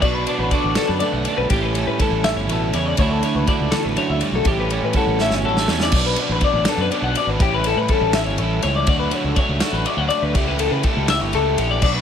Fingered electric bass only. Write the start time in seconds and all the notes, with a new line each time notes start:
0.02 B1
0.38 A1
0.64 A1
0.89 F#2
1.13 B1
1.37 B1
1.50 A1
1.87 A2
2.10 A1
2.35 G1
2.47 A1
2.73 E2
2.98 D2
3.35 C#2
3.60 C#2
3.85 A1
4.09 D2
4.32 B1
4.45 A1
4.82 A2
5.07 A1
5.30 G1
5.43 A1
5.67 E2
5.92 B1
6.29 A1
6.53 A1
6.77 F#2
7.02 B1
7.27 G#1
7.39 A1
7.77 A2
8.01 A1
8.26 G1
8.38 A1
8.64 C#2
8.88 D2
9.24 C#2
9.49 C#2
9.72 A1
9.97 D2
10.22 D2
10.34 C#2
10.71 C#3
10.96 C#2
11.21 G1
11.33 C#2
11.57 A#1
11.81 B1